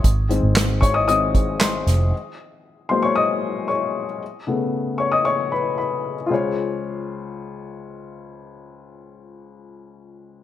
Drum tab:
HH |xxxxxxxx|--------|--------|--------|
CP |--x---x-|--------|--------|--------|
SD |--o---oo|--------|--------|--------|
BD |o--o-o--|--------|--------|--------|

HH |--------|
CP |--------|
SD |--------|
BD |--------|